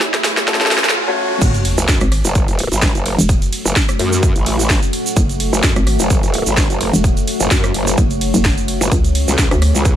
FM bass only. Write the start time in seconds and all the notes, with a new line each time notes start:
1.42 F#1
2.01 G#1
3.19 E1
5.17 F#1
5.76 G#1
6.94 E1
7.98 F#1
8.34 F#1
8.92 C#2
9.51 D2